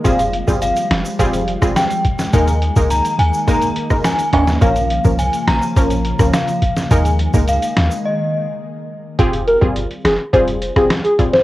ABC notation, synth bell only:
X:1
M:4/4
L:1/8
Q:1/4=105
K:Fm
V:1 name="Synth bell"
f2 f4 g2 | a2 b a b2 a a | f2 a b3 f2 | a2 f2 e3 z |
z8 |]